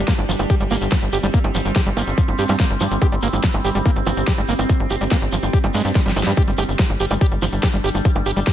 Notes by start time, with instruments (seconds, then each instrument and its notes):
Already playing: synth drone G3 C4
0.08 acid bass A#3, kick, snare, closed hi-hat, shekere
0.18 analog synth bass G1, closed hi-hat, high bongo
0.29 analog synth bass G1, acid bass F3, open hi-hat, shekere
0.39 analog synth bass G1, closed hi-hat, high bongo, shekere
0.50 acid bass G4, kick, closed hi-hat, shekere
0.60 analog synth bass G1, acid bass G3, closed hi-hat
0.71 analog synth bass G1, acid bass A#3, open hi-hat, high bongo, shekere
0.81 analog synth bass G1, closed hi-hat, shekere
0.92 acid bass F3, kick, snare, closed hi-hat, high bongo
1.02 analog synth bass G1, closed hi-hat
1.13 analog synth bass G1, acid bass G4, open hi-hat, shekere
1.23 analog synth bass G1, acid bass G3, closed hi-hat, high bongo, shekere
1.33 acid bass A#3, kick, closed hi-hat, shekere
1.44 analog synth bass G1, closed hi-hat, high bongo
1.54 analog synth bass G1, acid bass F3, open hi-hat, shekere
1.60 closed hi-hat
1.65 analog synth bass G1, closed hi-hat, shekere
1.76 acid bass G4, kick, snare, closed hi-hat, high bongo
1.86 analog synth bass G1, acid bass G3, closed hi-hat
1.97 analog synth bass G1, acid bass A#3, open hi-hat, high bongo, shekere
2.07 analog synth bass G1, closed hi-hat, shekere
2.18 acid bass F3, kick, closed hi-hat, shekere
2.28 analog synth bass G1, closed hi-hat, high bongo
2.39 analog synth bass G2, acid bass G4, open hi-hat, shekere
2.49 analog synth bass G2, acid bass G3, snare, closed hi-hat, high bongo, shekere
2.60 acid bass A#3, kick, snare, closed hi-hat, shekere
2.70 analog synth bass G1, closed hi-hat
2.80 analog synth bass G2, acid bass F3, open hi-hat, high bongo, shekere
2.90 analog synth bass G1, closed hi-hat, shekere
3.02 acid bass G4, kick, closed hi-hat, high bongo, shekere
3.12 analog synth bass G1, acid bass G3, closed hi-hat
3.22 analog synth bass G1, acid bass A#3, open hi-hat, shekere
3.28 closed hi-hat
3.33 analog synth bass G1, closed hi-hat, high bongo, shekere
3.44 acid bass F3, kick, snare, closed hi-hat, shekere
3.54 analog synth bass G1, closed hi-hat, high bongo
3.65 analog synth bass G1, acid bass G4, open hi-hat, shekere
3.75 analog synth bass G1, acid bass G3, closed hi-hat, shekere
3.86 acid bass A#3, kick, closed hi-hat, high bongo, shekere
3.96 analog synth bass G1, closed hi-hat
4.07 analog synth bass G1, acid bass F3, open hi-hat, high bongo, shekere
4.17 analog synth bass G1, closed hi-hat, shekere
4.27 acid bass G4, kick, snare, closed hi-hat, shekere
4.38 analog synth bass G1, acid bass G3, closed hi-hat, high bongo
4.48 analog synth bass G1, acid bass A#3, open hi-hat, shekere
4.59 analog synth bass G1, closed hi-hat, high bongo, shekere
4.69 acid bass F3, kick, closed hi-hat, shekere
4.80 analog synth bass G1, closed hi-hat
4.90 analog synth bass G1, acid bass G4, open hi-hat, high bongo, shekere
4.96 closed hi-hat
5.01 analog synth bass G1, acid bass G3, closed hi-hat, shekere
5.11 acid bass A#3, kick, snare, closed hi-hat, high bongo, shekere
5.22 analog synth bass G1, closed hi-hat
5.32 analog synth bass G1, acid bass F3, open hi-hat, shekere
5.43 analog synth bass G1, closed hi-hat, high bongo, shekere
5.53 acid bass G4, kick, closed hi-hat, shekere
5.64 analog synth bass G1, acid bass G3, closed hi-hat, high bongo
5.74 analog synth bass G2, acid bass G#3, open hi-hat, shekere
5.85 analog synth bass G2, snare, closed hi-hat, shekere
5.95 acid bass G3, kick, snare, closed hi-hat, high bongo, shekere
6.06 analog synth bass G1, acid bass G3, snare, closed hi-hat
6.16 analog synth bass G1, open hi-hat, high bongo, shekere
6.23 analog synth bass G2, acid bass G3, snare, closed hi-hat, shekere
6.37 synth drone G3 D4, acid bass G4, kick, closed hi-hat, high bongo, shekere
6.48 analog synth bass G1, acid bass G3, closed hi-hat
6.58 analog synth bass G1, acid bass G4, open hi-hat, high bongo, shekere
6.64 closed hi-hat
6.69 analog synth bass G1, closed hi-hat, shekere
6.79 acid bass F3, kick, snare, closed hi-hat, shekere
6.90 analog synth bass G1, closed hi-hat, high bongo
7.00 analog synth bass G1, acid bass G4, open hi-hat, shekere
7.10 analog synth bass G1, acid bass G3, closed hi-hat, high bongo, shekere
7.21 acid bass G4, kick, closed hi-hat, shekere
7.32 analog synth bass G1, closed hi-hat
7.42 analog synth bass G1, acid bass F3, open hi-hat, high bongo, shekere
7.53 analog synth bass G1, closed hi-hat, shekere
7.63 acid bass G4, kick, snare, closed hi-hat, high bongo, shekere
7.74 analog synth bass G1, acid bass G3, closed hi-hat
7.84 analog synth bass G1, acid bass G4, open hi-hat, shekere
7.95 analog synth bass G1, closed hi-hat, high bongo, shekere
8.05 acid bass F3, kick, closed hi-hat, shekere
8.16 analog synth bass G1, closed hi-hat, high bongo
8.26 analog synth bass G1, acid bass G4, open hi-hat, shekere
8.31 closed hi-hat
8.37 analog synth bass G1, acid bass G3, closed hi-hat, shekere
8.47 acid bass G4, kick, snare, closed hi-hat, high bongo, shekere